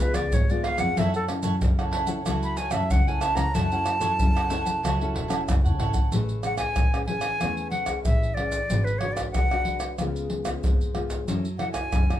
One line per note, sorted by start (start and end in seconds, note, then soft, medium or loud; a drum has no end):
0.00 0.30 C#3 medium
0.00 0.44 G#3 medium
0.00 0.44 B3 medium
0.00 0.44 F4 medium
0.00 0.13 B4 soft
0.00 0.16 B4 medium
0.00 0.13 C#5 medium
0.00 0.14 F5 soft
0.14 0.29 C#2 medium
0.14 0.25 B4 medium
0.14 0.25 C#5 medium
0.14 0.35 D5 medium
0.14 0.25 F5 medium
0.14 pandeiro medium
0.14 tamborim medium
0.14 maracas medium
0.32 0.61 G#1 medium
0.32 0.94 G#2 medium
0.32 0.52 C#5 medium
0.32 pandeiro medium
0.32 maracas loud
0.32 surdo loud
0.50 0.93 G#3 medium
0.50 0.93 B3 medium
0.50 0.94 F4 medium
0.50 0.63 C#5 soft
0.50 0.66 D5 medium
0.50 0.64 F5 soft
0.50 pandeiro soft
0.50 maracas soft
0.64 0.80 B4 medium
0.64 0.80 C#5 medium
0.64 0.81 F5 loud
0.64 0.78 F5 medium
0.64 pandeiro medium
0.64 tamborim medium
0.78 0.94 F2 loud
0.78 0.96 C#5 soft
0.78 0.95 F5 soft
0.78 1.00 F#5 loud
0.78 pandeiro medium
0.78 tamborim medium
0.78 maracas medium
0.97 1.39 F#2 medium
0.97 1.59 F#3 medium
0.97 1.25 C#4 medium
0.97 1.12 E4 medium
0.97 1.25 E4 medium
0.97 1.13 A4 medium
0.97 1.25 A4 medium
0.97 1.13 C#5 medium
0.97 1.14 E5 medium
0.97 1.14 F#5 medium
0.97 pandeiro medium
0.97 maracas medium
0.97 surdo medium
1.14 1.25 A4 medium
1.14 1.43 C#5 soft
1.14 1.42 F#5 soft
1.14 pandeiro soft
1.14 maracas soft
1.29 1.60 C#4 medium
1.29 1.60 E4 medium
1.29 1.60 A4 medium
1.29 pandeiro medium
1.29 tamborim medium
1.29 maracas medium
1.43 1.58 F#2 medium
1.43 1.54 E4 medium
1.43 1.54 A4 medium
1.43 1.54 C#5 loud
1.43 1.54 F#5 medium
1.43 pandeiro medium
1.43 maracas medium
1.61 2.17 F#2 medium
1.61 2.24 C#3 medium
1.61 pandeiro medium
1.61 maracas medium
1.61 surdo loud
1.79 2.06 C#4 medium
1.79 2.06 E4 medium
1.79 1.91 A4 soft
1.79 2.07 A4 medium
1.79 1.92 C#5 soft
1.79 1.92 F#5 medium
1.79 pandeiro soft
1.79 tamborim medium
1.79 maracas soft
1.91 2.08 E4 medium
1.91 2.07 A4 medium
1.91 2.06 C#5 medium
1.91 2.05 F#5 medium
1.91 pandeiro medium
2.06 2.20 C#4 medium
2.06 2.20 E4 medium
2.06 2.24 A4 soft
2.06 2.21 A4 medium
2.06 2.24 C#5 soft
2.06 2.23 F#5 soft
2.06 pandeiro medium
2.06 maracas medium
2.25 2.68 C#2 loud
2.25 2.88 F#3 medium
2.25 2.57 C#4 medium
2.25 2.56 E4 medium
2.25 2.57 E4 medium
2.25 2.57 A4 medium
2.25 2.57 C#5 medium
2.25 2.57 F#5 medium
2.25 pandeiro medium
2.25 tamborim medium
2.25 maracas medium
2.25 surdo medium
2.43 2.59 B5 medium
2.43 pandeiro soft
2.43 maracas soft
2.57 2.70 E4 medium
2.57 2.70 A4 soft
2.57 2.71 C#5 medium
2.57 2.72 F#5 medium
2.57 2.73 G#5 medium
2.57 pandeiro medium
2.57 maracas medium
2.71 2.87 F#2 medium
2.71 3.01 C#4 medium
2.71 2.82 E4 medium
2.71 3.01 E4 medium
2.71 2.82 A4 medium
2.71 3.01 A4 medium
2.71 2.83 C#5 medium
2.71 2.92 E5 medium
2.71 2.83 F#5 medium
2.71 pandeiro medium
2.71 tamborim medium
2.71 maracas medium
2.91 3.18 C#2 medium
2.91 3.52 C#3 medium
2.91 3.10 F#5 medium
2.91 pandeiro loud
2.91 maracas loud
2.91 surdo loud
3.07 3.35 C#4 medium
3.07 3.35 E4 medium
3.07 3.35 A4 medium
3.07 3.20 A4 soft
3.07 3.21 C#5 medium
3.07 3.22 F#5 medium
3.07 3.23 G#5 medium
3.07 pandeiro soft
3.07 maracas soft
3.21 3.37 E4 medium
3.21 3.36 A4 medium
3.21 3.35 C#5 medium
3.21 3.34 F#5 medium
3.21 3.37 A5 loud
3.21 pandeiro medium
3.21 tamborim medium
3.21 maracas medium
3.36 3.51 C#2 loud
3.36 3.48 C#4 medium
3.36 3.49 E4 medium
3.36 3.49 A4 medium
3.36 3.53 A4 soft
3.36 3.53 C#5 soft
3.36 3.52 F#5 medium
3.36 3.56 A#5 loud
3.36 pandeiro medium
3.36 tamborim medium
3.36 maracas medium
3.54 3.96 F#2 loud
3.54 4.17 F#3 medium
3.54 3.69 E4 medium
3.54 3.70 A4 medium
3.54 3.70 C#5 medium
3.54 3.70 F#5 medium
3.54 5.48 A5 loud
3.54 pandeiro medium
3.54 maracas medium
3.54 surdo medium
3.72 3.99 C#4 medium
3.72 3.99 E4 medium
3.72 3.99 A4 medium
3.72 4.00 A4 soft
3.72 4.00 C#5 soft
3.72 4.00 F#5 soft
3.72 pandeiro soft
3.72 maracas soft
3.86 pandeiro medium
3.86 tamborim medium
3.86 maracas medium
4.01 4.16 F#2 medium
4.01 4.45 C#4 medium
4.01 4.11 E4 medium
4.01 4.46 E4 medium
4.01 4.11 A4 medium
4.01 4.46 A4 medium
4.01 4.12 C#5 medium
4.01 4.11 F#5 medium
4.01 pandeiro medium
4.01 maracas medium
4.19 4.74 F#2 medium
4.19 4.80 C#3 medium
4.19 pandeiro medium
4.19 maracas loud
4.19 surdo loud
4.36 4.49 A4 soft
4.36 4.49 C#5 soft
4.36 4.50 F#5 medium
4.36 pandeiro soft
4.36 tamborim medium
4.36 maracas soft
4.50 4.82 C#4 medium
4.50 4.66 E4 medium
4.50 4.82 E4 medium
4.50 4.66 A4 medium
4.50 4.82 A4 medium
4.50 4.65 C#5 medium
4.50 4.64 F#5 medium
4.50 pandeiro medium
4.50 maracas medium
4.65 4.82 A4 soft
4.65 4.82 C#5 soft
4.65 4.81 F#5 medium
4.65 pandeiro medium
4.65 maracas medium
4.83 5.11 C#2 loud
4.83 5.46 F#3 medium
4.83 5.13 E4 medium
4.83 5.14 A4 medium
4.83 5.15 C#5 medium
4.83 5.15 F#5 medium
4.83 pandeiro medium
4.83 tamborim medium
4.83 maracas medium
4.83 surdo medium
5.01 5.28 C#4 medium
5.01 5.28 E4 medium
5.01 5.29 A4 medium
5.01 pandeiro soft
5.01 maracas soft
5.15 5.44 E1 medium
5.15 5.27 E4 soft
5.15 5.28 A4 soft
5.15 5.28 C#5 soft
5.15 5.29 F#5 soft
5.15 pandeiro medium
5.28 5.74 C#4 medium
5.28 5.39 E4 medium
5.28 5.74 E4 medium
5.28 5.40 A4 medium
5.28 5.75 A4 medium
5.28 5.40 C#5 medium
5.28 5.40 F#5 medium
5.28 pandeiro medium
5.28 tamborim medium
5.28 maracas medium
5.48 5.77 F#1 medium
5.48 6.10 C#3 medium
5.48 pandeiro loud
5.48 tamborim medium
5.48 maracas loud
5.48 surdo loud
5.64 5.78 A4 soft
5.64 5.79 C#5 medium
5.64 5.79 F#5 medium
5.64 surdo medium
5.64 pandeiro soft
5.64 maracas soft
5.79 6.09 G#1 medium
5.79 6.00 C#4 medium
5.79 5.95 E4 medium
5.79 6.01 E4 medium
5.79 5.94 A4 medium
5.79 6.01 A4 medium
5.79 5.93 C#5 medium
5.79 5.92 F#5 medium
5.79 pandeiro medium
5.93 6.11 A4 soft
5.93 6.10 C#5 soft
5.93 6.10 F#5 soft
5.93 pandeiro medium
5.93 maracas medium
5.93 surdo loud
6.12 6.67 A1 medium
6.12 6.74 A3 medium
6.12 6.40 C#4 medium
6.12 6.41 G#4 medium
6.12 6.41 B4 medium
6.12 pandeiro medium
6.12 maracas medium
6.12 surdo medium
6.29 pandeiro soft
6.29 maracas soft
6.43 6.75 C#4 medium
6.43 6.75 G#4 medium
6.43 6.75 B4 medium
6.43 6.57 F#5 medium
6.43 pandeiro medium
6.43 tamborim medium
6.43 maracas medium
6.58 7.04 G#5 medium
6.58 pandeiro medium
6.58 tamborim medium
6.58 maracas medium
6.58 surdo soft
6.76 7.32 A1 medium
6.76 7.39 E3 medium
6.76 pandeiro medium
6.76 tamborim medium
6.76 maracas medium
6.76 surdo loud
6.94 7.05 C#4 medium
6.94 7.05 G#4 medium
6.94 7.05 B4 medium
6.94 pandeiro soft
6.94 tamborim medium
6.94 maracas soft
7.06 7.36 C#4 medium
7.06 7.37 G#4 medium
7.06 7.37 B4 medium
7.06 7.68 G#5 loud
7.06 pandeiro medium
7.06 surdo soft
7.21 pandeiro medium
7.21 tamborim medium
7.21 maracas medium
7.41 7.96 E2 medium
7.41 8.03 A3 medium
7.41 7.85 C#4 medium
7.41 7.85 G#4 medium
7.41 7.86 B4 medium
7.41 pandeiro medium
7.41 tamborim medium
7.41 maracas medium
7.41 surdo medium
7.57 pandeiro soft
7.57 maracas soft
7.71 8.02 F#5 medium
7.71 pandeiro medium
7.86 8.32 C#4 medium
7.86 8.32 G#4 medium
7.86 8.32 B4 medium
7.86 pandeiro medium
7.86 tamborim medium
7.86 maracas medium
7.86 surdo soft
8.04 8.61 A1 medium
8.04 8.68 E3 soft
8.04 8.36 E5 loud
8.04 pandeiro medium
8.04 maracas medium
8.04 surdo loud
8.23 pandeiro soft
8.23 maracas soft
8.34 8.59 C#4 medium
8.34 8.59 G#4 medium
8.34 8.86 D5 loud
8.34 pandeiro medium
8.34 tamborim medium
8.38 8.59 B4 medium
8.52 pandeiro medium
8.52 maracas medium
8.52 surdo soft
8.70 9.25 G#1 loud
8.70 9.32 G#3 medium
8.70 8.90 D4 medium
8.70 8.90 F#4 medium
8.70 8.90 B4 medium
8.70 pandeiro medium
8.70 maracas medium
8.70 surdo medium
8.84 9.00 B4 medium
8.84 pandeiro soft
8.84 maracas soft
8.98 9.46 D4 medium
8.98 9.14 C#5 medium
8.98 pandeiro medium
8.98 tamborim medium
9.03 9.46 F#4 medium
9.03 9.46 B4 medium
9.13 9.31 D5 medium
9.17 pandeiro medium
9.17 tamborim medium
9.17 maracas medium
9.17 surdo soft
9.31 9.90 C2 medium
9.31 9.96 G#3 medium
9.31 9.93 F#5 loud
9.31 pandeiro medium
9.31 tamborim medium
9.31 maracas medium
9.31 surdo loud
9.51 9.95 D4 medium
9.51 9.96 F#4 medium
9.51 9.95 B4 medium
9.51 pandeiro soft
9.51 tamborim medium
9.51 maracas soft
9.65 pandeiro medium
9.65 surdo soft
9.80 pandeiro medium
9.80 tamborim medium
9.80 maracas medium
9.98 10.54 C#2 medium
9.98 10.61 C#3 medium
9.98 10.43 G#3 medium
9.98 10.43 B3 medium
9.98 10.43 F4 medium
9.98 pandeiro medium
9.98 tamborim medium
9.98 maracas medium
9.98 surdo medium
10.16 pandeiro soft
10.16 maracas soft
10.30 pandeiro medium
10.45 10.89 G#3 medium
10.45 10.90 B3 medium
10.45 10.90 F4 medium
10.45 pandeiro medium
10.45 tamborim medium
10.45 maracas medium
10.45 surdo soft
10.63 11.19 F2 medium
10.63 11.25 G#2 medium
10.63 pandeiro medium
10.63 maracas medium
10.63 surdo loud
10.81 pandeiro soft
10.81 maracas soft
10.95 11.25 G#3 medium
10.95 11.25 B3 medium
10.95 11.25 F4 medium
10.95 pandeiro medium
10.95 tamborim medium
11.10 pandeiro medium
11.10 maracas medium
11.10 surdo soft
11.27 11.83 F#2 medium
11.27 11.89 F#3 medium
11.27 11.47 C#4 medium
11.27 11.47 E4 medium
11.27 11.47 A4 medium
11.27 pandeiro medium
11.27 maracas medium
11.27 surdo medium
11.45 pandeiro soft
11.45 maracas soft
11.58 12.03 C#4 medium
11.58 12.03 E4 medium
11.58 12.03 A4 medium
11.58 11.72 F#5 medium
11.58 pandeiro medium
11.58 tamborim medium
11.72 12.19 G#5 medium
11.72 pandeiro medium
11.72 tamborim medium
11.72 maracas medium
11.72 surdo soft
11.93 12.20 F#2 medium
11.93 12.20 C#3 medium
11.93 pandeiro medium
11.93 tamborim medium
11.93 maracas medium
11.93 surdo loud
12.09 12.20 C#4 medium
12.09 12.20 E4 medium
12.09 12.20 A4 medium
12.09 pandeiro soft
12.09 tamborim medium
12.09 maracas soft